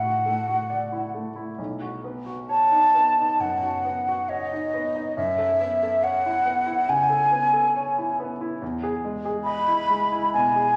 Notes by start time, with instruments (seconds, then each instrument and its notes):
Already playing: grand piano A2 A3 E4 F#4 D5, flute F#5
0.03 grand piano F#4
0.26 grand piano A3
0.48 grand piano F#4
0.70 grand piano D5
0.92 grand piano E4
1.14 grand piano A3
1.36 grand piano E4
1.58 grand piano B1
1.81 grand piano F#4
2.04 grand piano B3
2.26 grand piano F#4
2.49 grand piano C#5, flute A5
2.72 grand piano D#4
2.94 grand piano B3
3.17 grand piano D#4
3.39 grand piano F#2, flute F#5
3.63 grand piano F#4
3.85 grand piano B3
4.08 grand piano F#4
4.29 grand piano C#5, flute D#5
4.52 grand piano D#4
4.74 grand piano B3
4.95 grand piano D#4
5.16 grand piano F#2, flute E5
5.38 grand piano A4
5.60 grand piano B3
5.83 grand piano A4
6.03 grand piano C#5, flute F#5
6.26 grand piano E4
6.45 grand piano B3
6.67 grand piano E4
6.88 grand piano C#3, flute G#5
7.10 grand piano A4
7.31 grand piano B3
7.53 grand piano A4
7.76 grand piano C#5
7.98 grand piano E4
8.20 grand piano B3
8.41 grand piano E4
8.62 grand piano E2
8.83 grand piano G#4
9.05 grand piano G#3
9.25 grand piano G#4
9.45 grand piano D#5, flute B5
9.68 grand piano E4
9.90 grand piano G#3
10.12 grand piano E4
10.34 grand piano B2, flute G#5
10.56 grand piano G#4